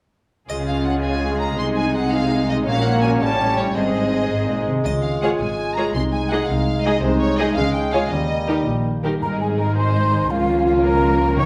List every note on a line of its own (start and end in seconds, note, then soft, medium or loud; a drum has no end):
0.49 1.55 C#2 soft
0.49 1.55 C#3 soft
0.49 1.60 C#3 soft
0.49 2.63 G#3 soft
0.49 2.70 G#3 soft
0.49 1.55 C#4 soft
0.49 1.55 F4 soft
0.49 1.61 F4 soft
0.49 2.63 G#4 soft
0.49 0.56 D#5 medium
0.49 triangle soft
0.68 1.21 G#3 soft
0.68 0.86 F5 soft
0.86 1.60 F4 soft
0.86 0.93 F#5 soft
1.04 2.12 G#4 soft
1.04 1.40 G#5 medium
1.23 1.76 G#3 soft
1.41 1.60 C#4 soft
1.41 1.58 A#5 medium
1.58 2.65 C2 soft
1.58 2.65 C3 soft
1.58 2.69 C3 soft
1.58 2.63 D#4 soft
1.58 2.67 D#4 soft
1.58 1.66 C6 medium
1.77 2.30 G#3 soft
1.77 1.95 G#5 medium
1.95 2.68 D#4 soft
1.95 2.13 F#5 medium
2.13 2.68 G#4 soft
2.13 2.49 F5 medium
2.31 2.68 G#3 soft
2.49 2.68 C4 soft
2.49 2.56 D#5 medium
2.66 3.20 A#1 medium
2.66 3.20 A#2 medium
2.66 3.23 A#2 medium
2.66 3.17 A#3 soft
2.66 3.24 A#3 medium
2.66 3.20 C#4 soft
2.66 3.77 C#4 medium
2.66 3.17 F#4 soft
2.66 3.71 C#5 medium
2.66 2.84 F5 medium
2.85 3.23 A#3 soft
2.85 3.03 F#5 medium
3.02 3.57 C#4 soft
3.02 3.23 F#4 soft
3.02 3.10 G#5 medium
3.21 3.76 A1 medium
3.21 3.76 A2 medium
3.21 3.77 A2 soft
3.21 3.76 G3 soft
3.21 3.72 C#4 medium
3.21 3.72 G4 soft
3.21 3.57 A5 medium
3.40 3.77 G3 soft
3.58 3.77 C#4 soft
3.58 3.78 G4 soft
3.58 3.76 C#5 medium
3.75 4.65 G#1 soft
3.75 4.26 G#2 soft
3.75 4.87 G#2 soft
3.75 4.63 G#3 soft
3.75 5.92 G#3 soft
3.75 4.67 C4 soft
3.75 4.63 D#4 soft
3.75 4.63 G#4 soft
3.75 4.63 C5 soft
3.75 4.67 D#5 medium
3.94 4.48 G#3 soft
4.13 4.87 C4 soft
4.31 4.48 G#2 soft
4.31 4.87 D#4 soft
4.49 4.67 A#2 soft
4.49 5.76 G#3 soft
4.67 4.75 C3 soft
4.67 4.87 D#3 soft
4.85 5.29 C#2 medium
4.85 5.96 C#3 soft
4.85 5.29 C#3 medium
4.85 5.97 F4 soft
4.85 4.92 D#5 medium
4.85 triangle soft
5.03 5.57 C#4 soft
5.03 5.21 F5 soft
5.22 5.31 G#3 soft
5.22 5.96 F4 soft
5.22 5.31 F4 soft
5.22 5.31 G#4 soft
5.22 5.31 C#5 soft
5.22 5.29 F#5 medium
5.40 5.84 G#1 soft
5.40 5.84 G#2 soft
5.40 6.48 G#4 soft
5.40 5.76 G#5 medium
5.58 5.96 C#4 soft
5.77 6.12 G#3 soft
5.77 5.85 G#3 soft
5.77 5.85 F4 soft
5.77 5.86 G#4 soft
5.77 5.86 C#5 soft
5.77 5.95 A#5 medium
5.95 6.38 C2 medium
5.95 7.03 C3 soft
5.95 6.38 C3 medium
5.95 6.87 G#3 soft
5.95 7.03 D#4 soft
5.95 6.02 C6 medium
6.13 6.66 G#3 soft
6.13 6.31 G#5 medium
6.31 6.40 G#3 soft
6.31 7.38 D#4 soft
6.31 6.40 D#4 soft
6.31 6.40 G#4 soft
6.31 6.40 D#5 soft
6.31 6.49 F#5 medium
6.49 6.92 C2 medium
6.49 6.92 C3 soft
6.49 7.38 G#4 soft
6.49 6.85 F5 medium
6.68 7.20 G#3 soft
6.85 6.94 G#3 medium
6.85 7.59 C4 soft
6.85 6.94 D#4 medium
6.85 6.94 G#4 soft
6.85 7.03 D#5 medium
6.85 6.94 D#5 soft
7.03 7.46 C2 medium
7.03 7.46 C3 medium
7.03 7.59 C3 medium
7.03 7.54 G#3 soft
7.03 7.59 D#4 medium
7.03 7.21 C5 medium
7.21 8.13 G#3 soft
7.21 7.39 C#5 medium
7.38 7.48 G#3 medium
7.38 7.59 D#4 soft
7.38 7.48 D#4 medium
7.38 7.47 G#4 medium
7.38 7.92 G#4 soft
7.38 7.57 D#5 medium
7.38 7.47 D#5 medium
7.56 8.00 C#2 medium
7.56 8.13 C#3 medium
7.56 8.01 C#3 medium
7.56 8.14 G#3 medium
7.56 8.13 C#4 medium
7.56 7.74 F5 medium
7.75 7.92 C#4 soft
7.75 7.93 G5 medium
7.92 8.02 G#3 soft
7.92 8.13 C#4 soft
7.92 8.02 F4 soft
7.92 8.02 G#4 soft
7.92 8.13 G#4 soft
7.92 8.01 C#5 soft
7.92 8.12 F5 medium
8.11 8.56 D#2 medium
8.11 9.24 D#3 soft
8.11 9.05 G3 soft
8.11 9.04 A#3 soft
8.11 8.67 D#5 medium
8.30 8.84 A#3 soft
8.48 8.57 D#3 soft
8.48 9.76 D#4 soft
8.48 8.57 D#4 soft
8.48 8.57 G4 soft
8.48 8.57 A#4 soft
8.67 9.11 A#1 soft
8.67 9.11 A#2 soft
8.67 9.24 G4 soft
8.86 9.24 A#3 soft
9.04 9.13 D#3 soft
9.04 9.24 G3 soft
9.04 9.13 D#4 soft
9.04 9.13 G4 soft
9.04 9.13 A#4 soft
9.22 10.27 G#1 soft
9.22 9.73 G#2 soft
9.22 10.26 G#2 soft
9.22 10.32 G#2 soft
9.22 10.26 G#3 soft
9.22 10.26 D#4 soft
9.22 10.27 G#4 soft
9.22 9.39 A#4 medium
9.22 9.28 A#5 medium
9.40 9.94 G#3 soft
9.40 9.59 G#4 soft
9.40 9.47 G#5 soft
9.58 10.32 C4 soft
9.58 9.77 A#4 soft
9.58 9.76 A#5 medium
9.76 10.32 D#4 soft
9.76 10.29 C5 medium
9.76 10.32 C6 medium
9.96 10.32 G#3 soft
10.13 10.32 D#3 soft
10.30 11.46 C#2 medium
10.30 11.46 C#2 soft
10.30 11.37 C#3 soft
10.30 11.38 F3 soft
10.30 11.46 A#3 soft
10.30 11.34 C#4 soft
10.30 10.65 F4 medium
10.30 11.34 F4 soft
10.30 11.38 F4 soft
10.30 10.66 F5 medium
10.49 10.83 C#4 soft
10.66 10.84 F4 medium
10.66 11.39 F4 soft
10.66 10.73 F5 medium
10.84 11.19 C#4 soft
10.84 11.37 A#4 medium
10.84 11.37 A#5 medium
11.02 11.39 F3 soft
11.20 11.46 C#4 soft
11.36 11.46 C#3 medium
11.36 11.46 C#3 soft
11.36 11.46 G3 soft
11.36 11.46 D#4 soft
11.36 11.46 D#4 medium
11.36 11.46 G4 soft
11.36 11.46 C#5 medium
11.36 11.46 C#6 medium